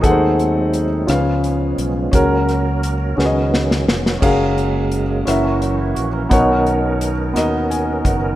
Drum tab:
CC |------------|------------|x-----------|------------|
HH |x-x-x-x-x-x-|x-x-x-------|--x-x-x-x-x-|x-x-x-x-x-x-|
SD |------r-----|--r---o-oooo|------r-----|------r-----|
BD |o-----------|o-----------|o-----------|o---------o-|